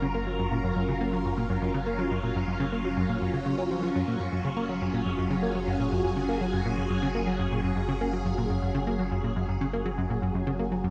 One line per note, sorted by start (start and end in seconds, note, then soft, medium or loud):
0.00 3.93 F#1 medium
0.00 0.07 C#3 loud
0.00 10.90 F#3 medium
0.00 10.90 C#4 medium
0.00 10.90 F4 medium
0.00 4.59 A#4 medium
0.15 0.22 A#3 medium
0.27 0.31 F#3 medium
0.39 0.47 F#2 medium
0.51 0.59 A#2 medium
0.64 0.71 F#2 medium
0.76 0.84 F#2 medium
0.89 0.93 C#3 medium
1.01 1.08 A#3 medium
1.13 1.17 F#3 medium
1.25 1.33 F#2 medium
1.38 1.45 A#2 medium
1.50 1.57 F#2 medium
1.62 1.70 F#2 medium
1.74 1.79 C#3 loud
1.86 1.94 A#3 medium
1.99 2.03 F#3 medium
2.11 2.19 F#2 medium
2.23 2.31 A#2 medium
2.35 2.43 F#2 medium
2.48 2.55 F#2 medium
2.60 2.65 C#3 loud
2.72 2.80 A#3 medium
2.85 2.89 F#3 medium
2.97 3.05 F#2 medium
3.09 3.17 A#2 medium
3.22 3.29 F#2 medium
3.34 3.38 C#3 medium
3.46 3.54 C#3 medium
3.58 3.63 C#4 medium
3.71 3.82 F3 medium
3.83 3.91 F3 medium
3.95 10.90 F#1 medium
3.95 4.03 F#2 medium
4.08 4.15 A#2 medium
4.20 4.28 F#2 medium
4.32 4.40 F#2 medium
4.44 4.49 C#3 loud
4.44 10.90 G#4 medium
4.57 4.65 A#3 medium
4.69 4.74 F#3 medium
4.82 4.89 F#2 medium
4.94 5.01 A#2 medium
5.06 5.14 F#2 medium
5.18 5.26 F#2 medium
5.30 5.35 C#3 loud
5.43 5.50 A#3 medium
5.55 5.60 F#3 medium
5.67 5.75 F#2 medium
5.80 5.87 A#2 medium
5.92 6.00 F#2 medium
6.04 6.12 F#2 medium
6.17 6.21 C#3 medium
6.29 6.37 A#3 medium
6.41 6.46 F#3 medium
6.53 6.61 F#2 medium
6.66 6.73 A#2 medium
6.78 6.86 F#2 medium
6.90 6.98 F#2 medium
7.03 7.07 C#3 loud
7.15 7.23 A#3 medium
7.27 7.32 F#3 medium
7.39 7.47 F#2 medium
7.52 7.60 A#2 medium
7.64 7.72 F#2 medium
7.76 7.84 F#2 medium
7.89 7.93 C#3 loud
8.01 8.09 A#3 medium
8.13 8.18 F#3 medium
8.25 8.33 F#2 medium
8.38 8.46 A#2 medium
8.50 8.58 F#2 medium
8.62 8.70 F#2 medium
8.75 8.79 C#3 loud
8.87 8.95 A#3 medium
8.99 9.04 F#3 medium
9.12 9.19 F#2 medium
9.24 9.32 A#2 medium
9.36 9.44 F#2 medium
9.49 9.56 F#2 medium
9.61 9.66 C#3 loud
9.73 9.81 A#3 medium
9.86 9.90 F#3 medium
9.98 10.06 F#2 medium
10.10 10.18 A#2 medium
10.22 10.30 F#2 medium
10.35 10.42 F#2 medium
10.47 10.52 C#3 loud
10.59 10.67 A#3 medium
10.72 10.76 F#3 medium
10.84 10.90 F#2 medium